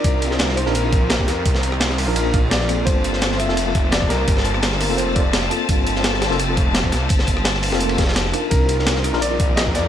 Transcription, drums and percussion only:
0.04 kick, closed hi-hat, ride
0.22 closed hi-hat, ride
0.31 snare
0.39 snare, closed hi-hat, ride
0.49 snare
0.57 cross-stick, closed hi-hat, ride
0.66 snare
0.75 closed hi-hat, ride
0.92 kick, closed hi-hat, ride
1.10 snare, closed hi-hat, ride
1.20 kick, ride
1.28 snare, closed hi-hat, ride
1.46 kick, closed hi-hat, ride
1.55 snare
1.63 closed hi-hat, ride
1.72 cross-stick
1.80 snare, closed hi-hat, ride
1.90 snare
1.98 open hi-hat, ride
2.07 ride
2.16 closed hi-hat, ride
2.34 kick, closed hi-hat, ride
2.51 snare, closed hi-hat, ride
2.61 snare
2.69 cross-stick, closed hi-hat, ride
2.87 kick, closed hi-hat, ride
3.04 closed hi-hat, ride
3.13 snare
3.22 snare, closed hi-hat, ride
3.31 snare
3.39 cross-stick, closed hi-hat, ride
3.49 snare
3.57 closed hi-hat, ride
3.75 kick, closed hi-hat, ride
3.92 snare, closed hi-hat, ride
4.02 kick, ride
4.10 snare, closed hi-hat, ride
4.28 kick, closed hi-hat, ride
4.37 snare
4.45 closed hi-hat, ride
4.54 cross-stick
4.62 snare, closed hi-hat, ride
4.72 snare
4.81 open hi-hat, ride
4.90 ride
4.98 closed hi-hat, ride
5.16 kick, closed hi-hat, ride
5.33 snare, closed hi-hat, ride
5.43 snare
5.51 cross-stick, closed hi-hat, ride
5.69 kick, closed hi-hat, ride
5.87 closed hi-hat, ride
5.95 snare
6.04 snare, closed hi-hat, ride
6.14 snare
6.22 cross-stick, snare, closed hi-hat, ride
6.31 snare
6.39 closed hi-hat, ride
6.57 kick, closed hi-hat, ride
6.74 snare, closed hi-hat, ride
6.84 kick, ride
6.92 snare, closed hi-hat, ride
7.09 kick, closed hi-hat, ride
7.19 snare
7.27 kick, closed hi-hat, ride
7.37 cross-stick
7.45 snare, closed hi-hat, ride
7.54 snare
7.63 open hi-hat, ride
7.72 snare, ride
7.80 closed hi-hat, ride
7.89 ride
7.98 kick, snare, closed hi-hat, ride
8.03 snare, ride
8.07 snare, ride
8.11 snare, ride
8.15 snare, closed hi-hat, ride
8.25 snare
8.34 cross-stick, closed hi-hat, ride
8.51 kick, closed hi-hat, ride
8.69 closed hi-hat, ride
8.79 snare
8.87 snare, closed hi-hat, ride
8.96 snare
9.04 cross-stick, closed hi-hat, ride
9.13 snare
9.22 closed hi-hat, ride
9.40 kick, closed hi-hat, ride
9.57 snare, closed hi-hat, ride
9.67 kick, ride
9.75 snare, closed hi-hat, ride

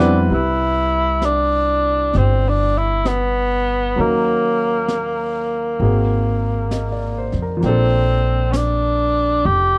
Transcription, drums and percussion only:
0.00 snare
0.29 brush sweep
1.22 brush sweep, snare, hi-hat pedal
2.13 brush sweep, snare
3.05 brush sweep, snare, hi-hat pedal
3.97 brush sweep
4.88 brush sweep, snare, hi-hat pedal
5.80 brush sweep
6.71 brush sweep, snare, hi-hat pedal
7.32 snare
7.62 brush sweep, snare
8.53 brush sweep, snare, hi-hat pedal
9.45 brush sweep

